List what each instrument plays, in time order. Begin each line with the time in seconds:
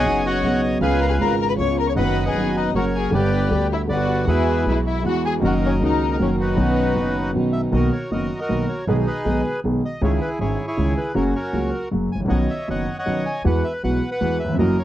Already playing: violin section G#4, bandoneon C#5 D#5 F#5
0.00 grand piano C#3, bandoneon G#5
0.04 upright bass F#1, grand piano F#1 F#2 F#3 B3 D#4, string section B3 C#4 D#4
0.24 violin section F#4, bandoneon C#5 D#5 F#5
0.42 upright bass B1, grand piano B1 B2 C#3 F#3 B3 D#4, string section B3 C#4 D#4
0.80 upright bass C#2, grand piano C#2 C#3 G#3 B3 F4, string section B3 C#4 F4, violin section G#4, bandoneon B4 F5 G#5
1.01 violin section A#4, bandoneon A#5
1.10 violin section G#4, bandoneon G#5
1.19 upright bass G#1, grand piano G#1 G#2 C#3 G#3 B3, string section B3 C#4 F4, violin section A#4, bandoneon A#5
1.23 grand piano F4
1.40 violin section A#4, bandoneon A#5
1.49 violin section B4, bandoneon B5
1.57 upright bass C#2, grand piano C#2 C#3 G#3 B3, string section B3 C#4 F4, violin section C#5, bandoneon C#6
1.62 grand piano F4
1.79 violin section A#4, bandoneon A#5
1.87 violin section C#5, bandoneon C#6
1.95 upright bass F#1, grand piano F#2 D#3 F#3 B3 F#4, string section B3 D#4 F#4, violin section B4, bandoneon D#5 F#5 B5
2.26 violin section G#4, bandoneon B4 D#5 G#5
2.33 upright bass F#1, grand piano F#2 D#3 F#3 B3, string section B3 D#4 F#4
2.38 grand piano F#4
2.57 violin section D#4, bandoneon D#5
2.73 upright bass F#1, grand piano F#2 C#3 F#3 A#3, string section A#3 C#4 F#4, violin section F#4, bandoneon A#4 C#5
2.77 grand piano F#4, bandoneon F#5
2.95 violin section G#4, bandoneon G#5
3.11 upright bass G1, grand piano G1 G2 D3 G3 B3 G4, string section B3 D4 G4, violin section G4, bandoneon B4 D5
3.16 bandoneon G5
3.49 grand piano D2 D3 G3 B3, upright bass D2, string section B3 D4 G4
3.53 grand piano G4
3.72 violin section E4, bandoneon E5
3.87 upright bass G1, grand piano G1 G2 D3 G3 B3, string section G3 B3 D4, violin section F#4, bandoneon B4 D5
3.91 grand piano B4, bandoneon F#5
4.27 upright bass E2, grand piano E2 E3 G#3 B3 F#4, string section G#3 E4 F#4, violin section E4, bandoneon G#4 B4 E5
4.64 upright bass B1, grand piano B1 B2 E3 G#3 B3, string section G#3 E4 F#4
4.69 violin section E4, bandoneon E5
4.87 violin section E4, bandoneon E5
5.03 grand piano E2 E3 G#3 B3 F#4, upright bass E2, string section G#3 E4 F#4, violin section F#4, bandoneon F#5
5.25 violin section G#4, bandoneon G#5
5.39 upright bass F#1, grand piano F#2 D#3 F#3 A#3 C#4 F#4, string section A#3 D#4 F#4
5.44 violin section F#4, bandoneon A#4 D#5 F#5
5.65 violin section C#4, bandoneon C#5
5.79 grand piano C#2 C#3 D#3 A#3 C#4, upright bass C#2, string section A#3 D#4 F#4, violin section D#4
5.83 grand piano F#4, bandoneon A#4 D#5
6.12 violin section D#4, bandoneon D#5
6.17 upright bass F#1, grand piano F#2 D#3 F#3 A#3 C#4 F#4, string section A#3 D#4 F#4
6.21 violin section C#4, bandoneon C#5
6.40 violin section B3, bandoneon D#4 F#4 B4
6.55 grand piano B1 B2 D#3 B3 C#4 F#4, upright bass B1, string section B3 C#4 D#4
6.94 grand piano F#1 F#2 D#3 B3 C#4 F#4, upright bass F#1, string section B3 C#4 D#4
7.32 grand piano B1 B2 D#3 B3 C#4, upright bass B1, string section B3 C#4 D#4
7.37 grand piano F#4
7.53 bandoneon E5
7.72 grand piano B1 B2 D#3 A#3 B3 F#4, upright bass B1, bandoneon F#4 D#5
7.76 bandoneon A#4
7.93 bandoneon C#5
8.11 grand piano F#1 F#2 D#3 A#3 B3 F#4, upright bass F#1, bandoneon F#4 A#4 D#5
8.39 bandoneon F#4 A#4 D#5
8.49 grand piano B1 B2 D#3 A#3 B3 F#4, upright bass B1
8.69 bandoneon C#5
8.87 upright bass B1, grand piano B1 B2 D#3 G#3 B3 G#4, bandoneon D#4 G#4 B4
9.06 bandoneon G#4 B4 D#5
9.25 upright bass B1, grand piano B1 B2 D#3 G#3 B3 G#4
9.64 upright bass B1, grand piano B1 B2 D#3 G#3 B3 G#4
9.85 bandoneon D#5
10.01 upright bass C#2, grand piano C#2 C#3 D#3 G#3 C#4 E4, bandoneon E4 G#4 C#5
10.21 bandoneon B4
10.39 upright bass G#1, grand piano G#1 G#2 D#3 G#3 C#4 E4, bandoneon E4 G#4 C#5
10.67 bandoneon E4 G#4 C#5
10.77 grand piano C#2 C#3 D#3 G#3 C#4 E4, upright bass C#2
10.97 bandoneon B4
11.14 upright bass F#1, grand piano F#2 C#3 F#3 A#3 F#4, bandoneon C#4 F#4 A#4
11.35 bandoneon F#4 A#4 C#5
11.53 upright bass C#2, grand piano C#2 C#3 F#3 A#3 F#4
11.91 upright bass F#1, grand piano F#2 C#3 F#3 A#3 F#4
12.12 grand piano G#1, upright bass G#1, bandoneon G#5
12.20 grand piano A1, upright bass A1
12.25 grand piano A#1 B1 B2 D#3 B3 C#4 F#4, upright bass A#1
12.29 upright bass B1, bandoneon C#5 D#5 F#5
12.50 bandoneon E5
12.68 grand piano F#1 F#2 D#3 B3 C#4 F#4, upright bass F#1, bandoneon C#5 D#5 F#5
12.99 bandoneon C#5 D#5 F#5
13.06 grand piano B1 B2 D#3 B3 C#4 F#4, upright bass B1
13.26 bandoneon G#5
13.44 grand piano E2 E3 G#3 B3 F#4, upright bass E2, bandoneon B4 F#5
13.64 bandoneon E5
13.83 upright bass B1, grand piano B1 B2 E3 G#3 B3 F#4, bandoneon B4 F#5
14.11 bandoneon B4 F#5
14.21 upright bass E2, grand piano E2 E3 G#3 B3 F#4
14.40 bandoneon E5
14.44 grand piano D#2
14.49 grand piano E2
14.54 grand piano F2
14.59 upright bass F#1, grand piano F#2 E3 F#3 A#3 C#4 F#4, bandoneon A#4 D#5
14.79 bandoneon C#5